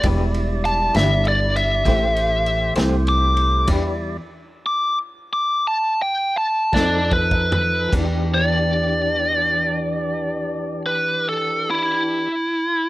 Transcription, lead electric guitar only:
\new Staff \with { instrumentName = "Lead electric guitar" } { \time 12/8 \key e \minor \tempo 4. = 58 r4 a''8 e''8 d''8 e''2 r8 d'''4 | r4. d'''8 r8 d'''8 a''8 g''8 a''8 <d'' a''>8 b'8 b'8 | r8 d''2. b'8 a'8 e'4. | }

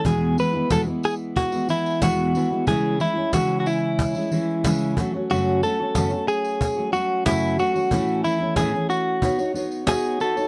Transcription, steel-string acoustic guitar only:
\new Staff \with { instrumentName = "Steel-string acoustic guitar" } { \time 4/4 \key e \major \tempo 4 = 92 <e, b, e gis b e'>8 <e gis b e'>16 <e gis b e'>16 <e, b, e gis b e'>16 <e gis b e'>4 <e gis b e'>16 <e gis b e'>8 <e, b, e gis b e'>8 <e gis b e'>16 <e gis b e'>16 | <cis e gis cis' e'>8 <e gis cis' e'>16 <gis cis' e'>16 <cis e gis cis' e'>4~ <cis e gis cis' e'>16 <gis cis' e'>16 <e gis cis' e'>8 <cis e gis cis' e'>8 <fis a cis' fis'>16 <fis a cis' fis'>16 | <fis, cis fis a cis' fis'>8 <fis a cis' fis'>16 <fis a cis' fis'>16 <fis, cis fis a cis' fis'>16 <fis a cis' fis'>4 <fis a cis' fis'>16 <fis a cis' fis'>8 <fis, cis fis a cis' fis'>8 <fis a cis' fis'>16 <fis a cis' fis'>16 | <a, e a cis' e'>8 <e a cis' e'>16 <a cis' e'>16 <a, e a cis' e'>16 <a cis' e'>8. <b dis' fis' cis''>16 <dis' fis' cis''>16 <b dis' fis' cis''>8 <b dis' fis' cis''>8 <b dis' fis' cis''>16 <dis' fis' cis''>16 | }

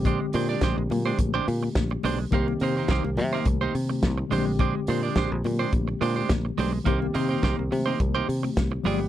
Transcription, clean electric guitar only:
\new Staff \with { instrumentName = "Clean electric guitar" } { \time 4/4 \key c \minor \tempo 4 = 106 <aes d' g' c''>16 r16 <aes d' g' c''>16 <aes d' g' d''>16 <aes d' g' c''>16 r8 <aes d' g' c''>16 r16 <aes d' g' c''>16 r4 <aes d' g' c''>16 r16 | <bes ees' g' c''>16 r16 <bes ees' g' c''>16 <bes ees' g' c''>16 <bes ees' g' c''>16 r8 <bes ees' g' c''>16 r16 <bes ees' g' c''>16 r4 <aes d' g' c''>16 r16 | <aes d' g' c''>16 r16 <aes d' g' c''>16 <aes d' g' d''>16 <aes d' g' c''>16 r8 <aes d' g' c''>16 r8 <aes d' g' c''>16 <aes d' g' c''>16 r8 <aes d' g' c''>16 r16 | <bes ees' g' c''>16 r16 <bes ees' g' c''>16 <bes ees' g' c''>16 <bes ees' g' c''>16 r8 <bes ees' g' c''>16 r16 <bes ees' g' c''>16 r4 <b f' aes' d''>16 r16 | }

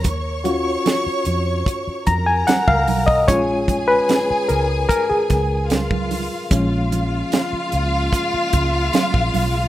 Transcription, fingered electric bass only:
\new Staff \with { instrumentName = "Fingered electric bass" } { \clef bass \time 4/4 \key bes \phrygian \tempo 4 = 74 ees,4 r8 f,8 r8 f,8 r16 des,16 ces,8 | bes,,4 r8 des,8 r8 des,4~ des,16 r16 | bes,,4 r8 des,8 r8 des,8 r16 bes,,16 ces,8 | }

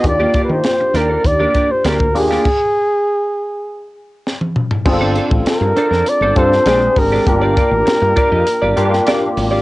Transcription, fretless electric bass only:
\new Staff \with { instrumentName = "Fretless electric bass" } { \clef bass \time 4/4 \key ees \lydian \tempo 4 = 100 ees,8 r16 ees16 r8 ees,8 ees,8 r8 d,8 ees,8 | r1 | g,,8. a,,16 r16 g,16 r16 f,16 r16 g,,16 g,8 bes,,8 aes,,8 | g,,8. a,,16 r16 g,16 r16 f,16 r16 g,,16 g,8 r8 aes,,8 | }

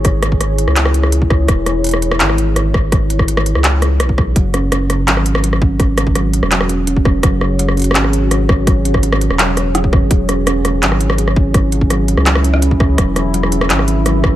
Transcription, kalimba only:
\new Staff \with { instrumentName = "Kalimba" } { \clef bass \time 4/4 \key e \mixolydian \tempo 4 = 167 r1 | r1 | r1 | fis8 cis'8 cis'8 cis8 fis8 fis8 fis8 cis'8 |
cis'8 cis8 fis8 fis8 fis8 cis'8 cis'8 cis8 | fis8 fis8 fis8 cis'8 cis'8 cis8 fis8 fis8 | fis8 cis'8 cis'8 cis8 fis8 fis8 fis8 cis'8 | fis8 cis'8 cis'8 cis8 fis8 fis8 fis8 cis'8 |
cis'8 cis8 fis8 fis8 fis8 cis'8 cis'8 cis8 | fis8 fis8 fis8 cis'8 cis'8 cis8 fis8 fis8 | }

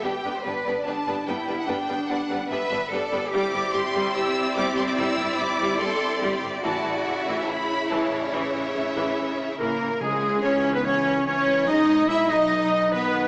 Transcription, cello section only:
\new Staff \with { instrumentName = "Cello section" } { \time 4/4 \key a \dorian \tempo 4 = 144 g'4 b'4 d'4 e'4 | d'2 b'4 a'4 | g'2 g'4 g'4 | e'2 a'4 g'4 |
fis'2 e'2 | cis'2. cis4 | \key cis \minor cis4 e8. dis16 e4 e4 | gis4 gis8 fis4. dis4 | }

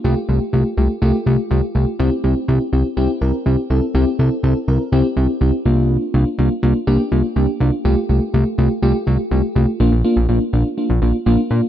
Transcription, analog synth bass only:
\new Staff \with { instrumentName = "Analog synth bass" } { \clef bass \time 4/4 \key bes \lydian \tempo 4 = 123 c,16 r16 c,16 r16 c,16 r16 c,16 r16 c,16 r16 c,16 r16 c,16 r16 c,16 r16 | c,16 r16 c,16 r16 c,16 r16 c,16 r16 c,16 r16 c,16 r16 c,16 r16 c,16 r16 | c,16 r16 c,16 r16 c,16 r16 c,16 r16 c,16 r16 c,16 r16 c,16 r16 c,8~ | c,16 r16 c,16 r16 c,16 r16 c,16 r16 c,16 r16 c,16 r16 c,16 r16 c,16 r16 |
c,16 r16 c,16 r16 c,16 r16 c,16 r16 c,16 r16 c,16 r16 c,16 r16 c,16 r16 | bes,,16 bes,,16 r16 bes,,16 bes,,16 r16 bes,,16 r8 bes,,16 bes,,16 r16 bes,,16 r16 bes,16 r16 | }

